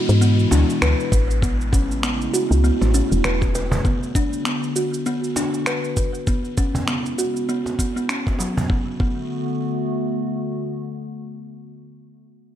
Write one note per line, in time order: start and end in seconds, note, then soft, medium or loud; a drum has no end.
0.00 1.40 B2 medium
0.00 1.40 E3 medium
0.00 1.40 G#3 medium
0.00 1.40 E4 medium
0.00 downlifter medium
0.09 0.46 G#2 medium
0.09 cabasa soft
0.21 0.50 B3 medium
0.21 cabasa soft
0.39 cabasa soft
0.51 0.64 D2 medium
0.51 0.68 D4 medium
0.51 cajon slap medium
0.51 cabasa medium
0.70 cabasa soft
0.82 0.94 D2 medium
0.82 0.92 B4 loud
0.82 finger snap loud
0.82 cabasa soft
1.00 cabasa soft
1.12 2.27 A1 medium
1.12 1.41 B4 medium
1.12 kick loud
1.12 cabasa medium
1.31 cabasa soft
1.42 3.82 C#3 medium
1.42 3.82 G#3 medium
1.42 6.23 A3 medium
1.42 1.52 B3 medium
1.42 3.82 E4 medium
1.42 kick loud
1.42 cabasa soft
1.61 cabasa soft
1.73 1.89 C#4 medium
1.73 kick loud
1.73 cabasa medium
1.91 cabasa soft
2.03 2.13 B3 loud
2.03 finger snap loud
2.03 cabasa soft
2.21 cabasa soft
2.33 2.43 F#4 medium
2.33 cabasa medium
2.51 2.71 C#2 loud
2.51 cabasa soft
2.64 2.93 B3 medium
2.64 cabasa soft
2.81 3.02 A1 medium
2.81 cajon slap medium
2.81 cabasa soft
2.94 3.11 C#4 medium
2.94 cabasa medium
3.12 3.21 E1 loud
3.12 cabasa soft
3.24 3.79 E1 medium
3.24 3.34 B4 medium
3.24 finger snap medium
3.24 cabasa soft
3.41 kick medium
3.41 cajon slap medium
3.41 cabasa soft
3.55 3.84 B4 medium
3.55 cajon slap medium
3.55 cabasa medium
3.72 cajon bass medium
3.72 cabasa soft
3.84 6.25 D3 medium
3.84 8.65 B3 medium
3.84 3.95 B3 medium
3.84 6.25 F#4 medium
3.84 kick loud
3.84 cabasa soft
4.03 cabasa soft
4.15 4.32 D4 medium
4.15 kick loud
4.15 cabasa medium
4.33 cabasa soft
4.45 4.56 B3 medium
4.45 finger snap loud
4.45 cabasa soft
4.63 cabasa soft
4.76 4.86 F#4 medium
4.76 cabasa medium
4.94 cabasa soft
5.06 5.35 B3 medium
5.06 cabasa soft
5.24 cabasa soft
5.36 5.53 D4 medium
5.36 cajon slap medium
5.36 cabasa medium
5.54 cabasa soft
5.66 5.77 B4 loud
5.66 finger snap medium
5.66 cabasa soft
5.84 cabasa soft
5.97 6.26 B4 medium
5.97 kick loud
5.97 cabasa medium
6.14 cabasa soft
6.27 8.68 C#3 medium
6.27 8.68 G#3 medium
6.27 6.38 B3 medium
6.27 8.68 E4 medium
6.27 kick loud
6.27 cabasa soft
6.45 cabasa soft
6.57 6.74 C#4 medium
6.57 kick loud
6.57 cabasa medium
6.75 cajon bass medium
6.75 cabasa soft
6.88 6.98 B3 medium
6.88 finger snap medium
6.88 cabasa soft
7.06 cabasa soft
7.18 7.28 F#4 medium
7.18 cabasa medium
7.36 cabasa soft
7.49 7.65 B3 medium
7.49 cabasa soft
7.66 cajon slap soft
7.66 cabasa soft
7.79 7.95 B3 medium
7.79 kick medium
7.79 cabasa medium
7.96 8.08 B3 medium
7.96 cabasa soft
8.09 8.26 C#4 medium
8.09 finger snap medium
8.09 cabasa soft
8.27 kick medium
8.27 cajon slap medium
8.27 cabasa soft
8.39 8.50 F#3 medium
8.39 cajon slap medium
8.39 cabasa medium
8.57 cajon bass medium
8.57 cabasa soft
8.70 11.88 D3 medium
8.70 11.88 A3 medium
8.70 8.88 B3 medium
8.70 11.88 B3 medium
8.70 11.88 F#4 medium
8.70 kick loud
9.00 9.19 B3 medium
9.00 kick loud